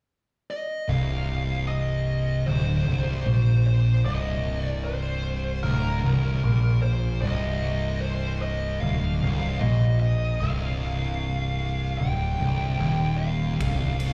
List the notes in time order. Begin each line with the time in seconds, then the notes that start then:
0.51 D#5
0.88 C1 C2 F5
1.67 D#5
2.47 D1 D2 C5
2.87 C1 C2
3.26 A#1 A#2
3.67 C5
4.05 C1 C2 D#5
4.61 D5
4.84 C5
5.63 D1 D2 A#4
6.04 C1 C2
6.44 A#1 A#2
6.82 C5
7.22 C1 C2 D#5
8.01 C5
8.42 D#5
8.80 D1 D2 F5
9.22 C1 C2
9.60 A#1 A#2 D#5
10.00 D#5
10.40 C1 C2 F5
11.99 D1 D2 G5
12.40 C1 C2
12.79 D#1 D#2
13.18 F5
13.60 C1 C2, kick, ride
14.00 ride